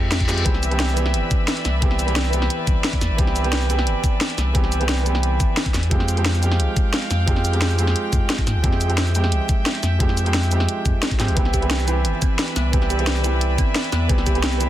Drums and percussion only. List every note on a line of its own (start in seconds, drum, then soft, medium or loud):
0.12 snare loud
0.12 closed hi-hat loud
0.12 cabasa soft
0.20 kick medium
0.20 closed hi-hat soft
0.29 snare soft
0.29 closed hi-hat medium
0.29 cabasa medium
0.38 closed hi-hat soft
0.46 kick loud
0.46 closed hi-hat loud
0.54 snare soft
0.63 closed hi-hat medium
0.63 cabasa medium
0.71 closed hi-hat soft
0.80 snare loud
0.80 closed hi-hat loud
0.89 cabasa soft
0.97 closed hi-hat medium
0.97 cabasa medium
1.06 snare medium
1.14 closed hi-hat loud
1.31 kick loud
1.31 closed hi-hat medium
1.31 cabasa medium
1.48 snare loud
1.48 closed hi-hat loud
1.48 cabasa soft
1.57 closed hi-hat soft
1.65 snare soft
1.65 closed hi-hat medium
1.65 cabasa medium
1.82 kick loud
1.82 closed hi-hat loud
1.91 snare soft
1.99 closed hi-hat medium
1.99 cabasa medium
2.08 closed hi-hat soft
2.16 snare loud
2.16 closed hi-hat loud
2.25 cabasa soft
2.33 closed hi-hat medium
2.33 cabasa medium
2.42 snare medium
2.50 closed hi-hat loud
2.67 kick loud
2.67 closed hi-hat medium
2.67 cabasa medium
2.84 snare loud
2.84 closed hi-hat medium
2.84 cabasa soft
2.93 kick medium
2.93 closed hi-hat soft
3.01 snare soft
3.01 closed hi-hat medium
3.01 cabasa medium
3.18 kick loud
3.18 closed hi-hat medium
3.27 snare soft
3.36 closed hi-hat medium
3.36 cabasa medium
3.44 closed hi-hat soft
3.53 snare loud
3.53 closed hi-hat medium
3.62 cabasa soft
3.70 closed hi-hat medium
3.70 cabasa medium
3.79 snare medium
3.87 closed hi-hat medium
4.04 kick loud
4.04 closed hi-hat medium
4.04 cabasa medium
4.21 snare loud
4.21 closed hi-hat medium
4.21 cabasa soft
4.30 closed hi-hat soft
4.38 snare soft
4.38 closed hi-hat medium
4.38 cabasa medium
4.55 kick loud
4.55 closed hi-hat medium
4.64 snare soft
4.72 closed hi-hat medium
4.72 cabasa medium
4.81 closed hi-hat soft
4.89 snare loud
4.89 closed hi-hat medium
4.98 cabasa soft
5.06 closed hi-hat medium
5.06 cabasa medium
5.15 snare medium
5.23 closed hi-hat medium
5.40 kick loud
5.40 closed hi-hat medium
5.40 cabasa medium
5.57 snare loud
5.57 closed hi-hat medium
5.57 cabasa soft
5.66 kick medium
5.66 closed hi-hat soft
5.74 snare soft
5.74 closed hi-hat medium
5.74 cabasa medium
5.83 closed hi-hat soft
5.91 kick loud
5.91 closed hi-hat medium
6.00 snare soft
6.08 closed hi-hat medium
6.08 cabasa medium
6.17 closed hi-hat soft
6.26 snare loud
6.26 closed hi-hat medium
6.34 cabasa soft
6.43 closed hi-hat medium
6.43 cabasa medium
6.52 snare medium
6.60 closed hi-hat medium
6.77 kick loud
6.77 closed hi-hat medium
6.77 cabasa medium
6.94 snare loud
6.94 closed hi-hat medium
6.94 cabasa soft
7.02 closed hi-hat soft
7.11 snare soft
7.11 closed hi-hat medium
7.11 cabasa medium
7.28 kick loud
7.28 closed hi-hat medium
7.36 snare soft
7.45 closed hi-hat medium
7.45 cabasa medium
7.53 closed hi-hat soft
7.62 snare loud
7.62 closed hi-hat loud
7.70 cabasa soft
7.79 closed hi-hat medium
7.79 cabasa medium
7.87 snare medium
7.96 closed hi-hat medium
8.13 kick loud
8.13 closed hi-hat medium
8.13 cabasa medium
8.30 snare loud
8.30 closed hi-hat medium
8.30 cabasa soft
8.38 kick medium
8.38 closed hi-hat soft
8.47 snare soft
8.47 closed hi-hat medium
8.47 cabasa medium
8.64 kick loud
8.64 closed hi-hat loud
8.73 snare soft
8.81 closed hi-hat medium
8.81 cabasa medium
8.90 closed hi-hat soft
8.98 snare loud
8.98 closed hi-hat loud
9.07 cabasa soft
9.15 closed hi-hat medium
9.15 cabasa medium
9.24 snare medium
9.32 closed hi-hat medium
9.49 kick loud
9.49 closed hi-hat medium
9.49 cabasa medium
9.66 snare loud
9.66 closed hi-hat medium
9.66 cabasa soft
9.75 closed hi-hat soft
9.83 snare soft
9.83 closed hi-hat medium
9.83 cabasa medium
10.00 kick loud
10.00 closed hi-hat loud
10.09 snare soft
10.17 closed hi-hat medium
10.17 cabasa medium
10.26 closed hi-hat soft
10.34 snare loud
10.34 closed hi-hat loud
10.43 cabasa soft
10.51 closed hi-hat medium
10.51 cabasa medium
10.60 snare medium
10.69 closed hi-hat medium
10.86 kick loud
10.86 closed hi-hat medium
10.86 cabasa medium
11.03 snare loud
11.03 closed hi-hat loud
11.03 cabasa soft
11.11 kick medium
11.11 closed hi-hat soft
11.20 snare soft
11.20 closed hi-hat medium
11.20 cabasa medium
11.28 closed hi-hat soft
11.37 kick loud
11.37 closed hi-hat loud
11.45 snare soft
11.54 kick medium
11.54 closed hi-hat medium
11.54 cabasa medium
11.62 closed hi-hat soft
11.71 snare loud
11.71 closed hi-hat loud
11.79 cabasa soft
11.88 closed hi-hat medium
11.88 cabasa medium
12.05 closed hi-hat loud
12.22 kick loud
12.22 closed hi-hat medium
12.22 cabasa medium
12.39 snare loud
12.39 closed hi-hat loud
12.39 cabasa soft
12.48 closed hi-hat soft
12.56 snare soft
12.56 closed hi-hat medium
12.56 cabasa medium
12.73 kick loud
12.73 closed hi-hat medium
12.82 snare soft
12.90 closed hi-hat medium
12.90 cabasa medium
12.99 closed hi-hat soft
13.07 snare loud
13.07 closed hi-hat loud
13.16 cabasa soft
13.24 closed hi-hat medium
13.24 cabasa medium
13.41 closed hi-hat medium
13.58 kick loud
13.58 closed hi-hat medium
13.58 cabasa medium
13.75 snare loud
13.75 closed hi-hat loud
13.75 cabasa soft
13.84 closed hi-hat soft
13.92 snare medium
13.92 closed hi-hat medium
13.92 cabasa medium
14.09 kick loud
14.09 closed hi-hat medium
14.18 snare soft
14.26 kick medium
14.26 closed hi-hat medium
14.26 cabasa medium
14.35 closed hi-hat soft
14.43 snare loud
14.43 closed hi-hat medium
14.52 cabasa soft
14.61 closed hi-hat medium
14.61 cabasa medium